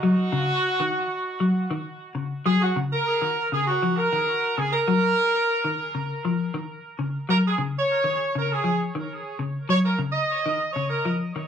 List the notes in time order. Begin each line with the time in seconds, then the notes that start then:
Already playing: F#4
0.03 F#3
0.32 C#3
0.80 D#3
1.40 F#3
1.71 D#3
2.15 C#3
2.46 F#3 G#4
2.62 F#4
2.76 C#3
2.92 A#4
3.22 D#3
3.52 C#3 G#4
3.67 F#4
3.82 F3
3.97 A#4
4.13 D#3
4.57 C#3 G#4
4.73 A#4
4.88 F#3
5.64 D#3
5.95 C#3
6.25 F3
6.54 D#3
6.99 C#3
7.29 F#3 A#4
7.47 G#4
7.58 C#3
7.79 C#5
8.04 D#3
8.35 C#3 A#4
8.52 G#4
8.64 F3
8.95 D#3
9.39 C#3
9.69 F#3 C#5
9.85 A#4
9.99 C#3
10.12 D#5
10.46 D#3
10.73 C#3 C#5
10.89 A#4
11.05 F3
11.36 D#3